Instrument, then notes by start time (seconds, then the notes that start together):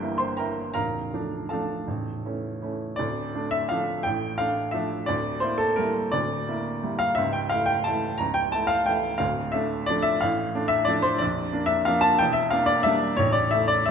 grand piano
Already playing: G1 G2 G4 E5 G5
0.02 E3 A#3 E4
0.18 C5 C6
0.37 E3 A#3 E4 A#4 G5 A#5
0.74 A0 A1 A#4 F5 A#5
1.14 F3 A3 D4
1.49 F3 A3 D4 A4 F5 A5
1.87 A0 A1
2.25 E3 A3 C#4
2.62 E3 A3 C#4
2.96 D1 D2 D5
3.35 A3 D4
3.51 E5
3.69 F3 A3 D4 F5
4.03 A1 A2 G5
4.38 A3 D4 F5
4.71 F3 A3 D4 E5
5.06 D1 D2 D5
5.40 A#3 E4 C5
5.58 A4
5.76 G3 A#3 E4 A#4
6.12 D1 D2 D5
6.48 A#3 E4
6.83 G3 A#3 E4
6.99 F5
7.15 C#1 C#2 E5
7.33 G5
7.49 A3 E4 F5
7.66 G5
7.84 E3 A3 E4 A5
8.18 C#1 C#2 A#5
8.34 G5
8.52 A3 E4 A5
8.67 F5
8.86 E3 A3 E4 G5
9.18 D1 D2 F5
9.52 A3 D4 E5
9.86 F3 A3 D4 D5
10.02 E5
10.21 A1 A2 F5
10.55 A3 D4
10.68 E5
10.85 F3 A3 D4 D5
11.02 C5
11.18 A#0 A#1 D5
11.52 A#3 D4
11.66 E5
11.85 F3 A#3 D4 F5
12.01 A5
12.19 E1 E2 G5
12.33 E5
12.51 A#3 D4 F5
12.66 D5
12.83 G3 A#3 D4 E5
13.17 A0 A1 C#5
13.33 D5
13.51 A3 E4 E5
13.68 D5
13.86 E5